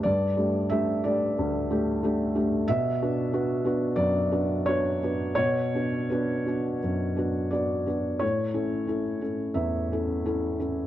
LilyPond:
\new Staff \with { instrumentName = "Felt piano" } { \time 4/4 \key b \minor \tempo 4 = 89 << { d''4 e''8 d''2 r8 | e''2 d''4 cis''4 | cis''4 b'2 d''4 | cis''2 e''2 | } \\ { g,8 <a d' g'>8 <a d' g'>8 <a d' g'>8 d,8 <a d' g'>8 <a d' g'>8 <a d' g'>8 | b,8 <b d' fis'>8 <b d' fis'>8 <b d' fis'>8 fis,8 <b d' fis'>8 <b d' fis'>8 <b d' fis'>8 | b,8 <b d' fis'>8 <b d' fis'>8 <b d' fis'>8 fis,8 <b d' fis'>8 <b d' fis'>8 <b d' fis'>8 | a,8 <cis' e' a'>8 <cis' e' a'>8 <cis' e' a'>8 e,8 <cis' e' a'>8 <cis' e' a'>8 <cis' e' a'>8 | } >> }